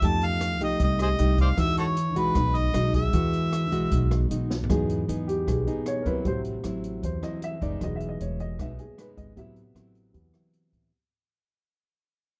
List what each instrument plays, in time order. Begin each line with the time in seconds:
0.02 upright bass F2, nylon-string guitar F3 A3 D#4 G4, kick, closed hi-hat
0.06 harmonica A5
0.21 closed hi-hat
0.26 harmonica F5
0.41 cross-stick, closed hi-hat
0.60 upright bass C2, nylon-string guitar A3 D#4 G4, harmonica D#5, closed hi-hat
0.80 upright bass C2, nylon-string guitar C3, kick, closed hi-hat
0.84 harmonica D#5
0.99 grand piano G4, harmonica G#4 C5 D#5, cross-stick, closed hi-hat
1.18 upright bass C2, nylon-string guitar A3 D#4 G4, closed hi-hat
1.38 harmonica C5 D5 F5, kick, closed hi-hat
1.57 upright bass E2, nylon-string guitar E3 G#3 D#4 F#4, harmonica E5, kick, cross-stick, closed hi-hat
1.77 harmonica F#4 A4 C#5, closed hi-hat
1.97 closed hi-hat
2.15 upright bass B1, nylon-string guitar G#3 D#4 F#4, harmonica B4, closed hi-hat
2.35 upright bass B1, nylon-string guitar B2, kick, cross-stick, closed hi-hat
2.55 harmonica D#5, closed hi-hat
2.74 upright bass B1, nylon-string guitar G#3 D#4 F#4, cross-stick, closed hi-hat
2.94 grand piano G#4, harmonica E5, kick, closed hi-hat
3.13 upright bass E2, nylon-string guitar E3 G#3 F#4, kick, closed hi-hat
3.33 closed hi-hat
3.52 cross-stick, closed hi-hat
3.71 upright bass B1, nylon-string guitar G#3 F#4, closed hi-hat
3.91 upright bass B1, nylon-string guitar B2, kick, closed hi-hat
4.11 cross-stick, closed hi-hat
4.31 upright bass B1, nylon-string guitar G#3 D#4 F#4, closed hi-hat
4.50 snare
4.63 floor tom
4.69 upright bass E2, nylon-string guitar E3 B3 D#4 G#4, grand piano F#3 G#3, kick, cross-stick, closed hi-hat
4.89 closed hi-hat
5.08 upright bass E2, nylon-string guitar B3 D#4 G#4, closed hi-hat
5.28 grand piano G4, closed hi-hat
5.47 upright bass B1, nylon-string guitar B2, grand piano G#4, kick, cross-stick, closed hi-hat
5.67 nylon-string guitar B3 D#4 G#4, closed hi-hat
5.86 grand piano C#5, cross-stick, closed hi-hat
6.02 upright bass E2, nylon-string guitar F#3 C4, grand piano A#4, kick, closed hi-hat
6.07 nylon-string guitar E4, grand piano B4
6.25 upright bass A1, nylon-string guitar A2, grand piano C3 F#3 C5, kick, closed hi-hat
6.44 closed hi-hat
6.64 upright bass A1, nylon-string guitar F#3 C4 E4, cross-stick, closed hi-hat
6.84 closed hi-hat
7.02 upright bass E2, nylon-string guitar E3, grand piano C5, kick, closed hi-hat
7.22 nylon-string guitar F#3 C4 E4, grand piano D#5, cross-stick, closed hi-hat
7.42 grand piano E5, closed hi-hat
7.61 upright bass F#1, nylon-string guitar G#3 B3 D#4, grand piano D5, kick, closed hi-hat
7.81 upright bass E1, nylon-string guitar E3, grand piano F#3 G#3 D#5, kick, cross-stick, closed hi-hat
7.96 grand piano E5
8.00 closed hi-hat
8.09 grand piano D#5
8.20 upright bass E1, grand piano C#5, closed hi-hat
8.40 grand piano D#5, closed hi-hat
8.59 upright bass B1, nylon-string guitar B2 G#3 B3 D#4, grand piano E5, kick, cross-stick, closed hi-hat
8.79 grand piano G#4, closed hi-hat
8.98 nylon-string guitar G#3 B3 D#4, grand piano B4, cross-stick, closed hi-hat
9.17 upright bass G#1, grand piano D#5, kick, closed hi-hat
9.36 upright bass A1, nylon-string guitar A2 F#3 C4 E4, grand piano C3 F#3 B3 E5, kick, closed hi-hat
9.56 closed hi-hat
9.75 upright bass A1, nylon-string guitar F#3 C4 E4, cross-stick, closed hi-hat
9.95 closed hi-hat
10.13 upright bass E2, grand piano C3 F#3 B3, nylon-string guitar E3, kick, closed hi-hat
10.34 nylon-string guitar F#3 C4 E4, cross-stick, closed hi-hat
10.53 closed hi-hat
10.73 upright bass A1, kick, closed hi-hat